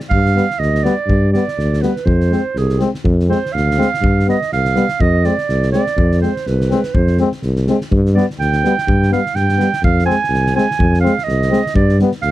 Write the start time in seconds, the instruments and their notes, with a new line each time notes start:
0.00 snare
0.10 tuba G2, clarinet F5, kick
0.26 snare
0.35 euphonium G3, trombone B3, snare
0.51 snare
0.59 tuba D2, clarinet D#5, snare
0.75 snare
0.83 euphonium G3, trombone B3, clarinet D5, snare
1.07 tuba G2, kick
1.32 euphonium G3, trombone B3, clarinet D5, snare
1.48 snare
1.57 tuba D2, snare
1.73 snare
1.81 euphonium G3, trombone B3, clarinet B4, snare
1.96 snare
2.05 tuba F2, clarinet C5, kick
2.21 snare
2.30 euphonium G#3, trombone C4, snare
2.55 tuba C2, clarinet G#4, snare
2.69 snare
2.79 euphonium G#3, trombone C4, snare
2.94 snare
3.04 tuba F2, kick
3.20 snare
3.29 euphonium G#3, trombone C4, clarinet C5, snare
3.46 snare
3.53 tuba D2, clarinet F5, snare
3.71 snare
3.77 euphonium G#3, trombone C4, snare
3.94 snare
4.01 tuba G2, kick
4.20 snare
4.27 euphonium G3, trombone B3, clarinet D#5, snare
4.42 snare
4.52 tuba C2, clarinet F5, snare
4.65 snare
4.76 euphonium G3, trombone B3, snare
4.88 snare
5.00 tuba F2, clarinet D#5, kick
5.24 euphonium G#3, trombone C4, clarinet D5, snare
5.38 snare
5.49 tuba C2, snare
5.63 snare
5.72 euphonium G#3, trombone C4, clarinet D5, snare
5.87 snare
5.97 tuba F2, kick
6.12 snare
6.21 euphonium G#3, trombone C4, clarinet C5, snare
6.37 snare
6.47 tuba C2, clarinet B4, snare
6.61 snare
6.71 euphonium G#3, trombone C4, snare
6.83 snare
6.94 tuba F2, clarinet C5, kick
7.07 snare
7.18 euphonium G#3, trombone C4, snare
7.32 snare
7.42 tuba C2, snare
7.56 snare
7.67 euphonium G#3, trombone C4, snare
7.81 snare
7.91 tuba G2, kick
8.06 snare
8.15 euphonium G3, trombone B3, clarinet D5, snare
8.30 snare
8.39 tuba D2, clarinet G5, snare
8.53 snare
8.64 euphonium G3, trombone B3, snare
8.78 snare
8.87 tuba G2, kick
9.03 snare
9.11 euphonium G3, trombone B3, clarinet F5, snare
9.26 snare
9.35 tuba G2, clarinet G5, snare
9.49 snare
9.57 euphonium G3, trombone B3, snare
9.73 snare
9.82 tuba F2, clarinet F5, kick
9.99 snare
10.05 euphonium G#3, trombone C4, clarinet G#5
10.10 snare
10.24 snare
10.29 tuba C2
10.34 snare
10.47 snare
10.55 euphonium G#3, trombone C4, clarinet G#5, snare
10.71 snare
10.79 tuba F2, kick
10.94 snare
11.00 trombone C4, clarinet F5
11.05 euphonium G#3, snare
11.18 snare
11.24 tuba C2, clarinet D#5
11.29 snare
11.42 snare
11.51 euphonium G#3, trombone C4, snare
11.66 snare
11.75 tuba G2, clarinet D5, kick
11.89 snare
11.99 euphonium G3, trombone B3, snare
12.12 snare
12.22 tuba D2, clarinet F5, snare